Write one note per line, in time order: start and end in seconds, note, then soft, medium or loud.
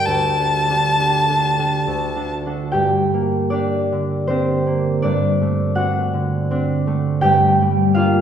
0.00 0.12 G2 soft
0.00 0.38 D4 soft
0.00 0.38 G4 soft
0.00 0.12 A#4 soft
0.06 1.86 D2 soft
0.06 2.31 A5 medium
0.39 0.69 D4 soft
0.39 0.69 G4 soft
0.39 0.69 A4 soft
0.69 0.98 D4 soft
0.69 0.99 G4 soft
0.69 0.99 A4 soft
0.98 1.28 D4 soft
0.98 1.28 G4 soft
0.98 1.29 A4 soft
1.29 1.57 D4 soft
1.29 1.57 G4 soft
1.29 1.58 A4 soft
1.58 2.15 D4 soft
1.58 1.91 G4 soft
1.58 2.16 A4 soft
1.87 2.78 D2 soft
2.16 2.45 D4 soft
2.16 2.45 F#4 soft
2.16 2.46 A4 soft
2.46 3.50 D4 soft
2.46 2.78 F#4 soft
2.46 2.78 A4 soft
2.72 5.03 G2 medium
2.72 3.52 G4 medium
2.72 5.05 G5 medium
3.14 4.65 A#3 soft
3.50 4.29 D4 medium
3.50 4.29 G4 soft
3.50 5.01 D5 medium
3.92 5.07 D3 soft
4.27 5.76 C4 medium
4.27 5.02 D4 soft
4.27 5.07 G4 soft
4.27 5.55 C5 medium
4.66 5.07 A#3 soft
5.02 7.22 G2 medium
5.02 5.76 D4 medium
5.02 8.21 D5 medium
5.42 6.86 A3 soft
5.75 6.50 C4 soft
5.75 6.50 D4 soft
5.75 7.26 F#4 medium
5.75 7.25 F#5 medium
6.14 7.26 D3 soft
6.51 7.27 C4 soft
6.51 7.97 D4 medium
6.87 7.27 A3 soft
7.21 8.21 G2 medium
7.21 8.21 G4 medium
7.21 8.21 G5 loud
7.62 8.21 G3 soft
7.94 8.21 A#3 soft
7.94 8.21 D4 soft
7.94 8.21 F4 medium
7.94 8.21 F5 medium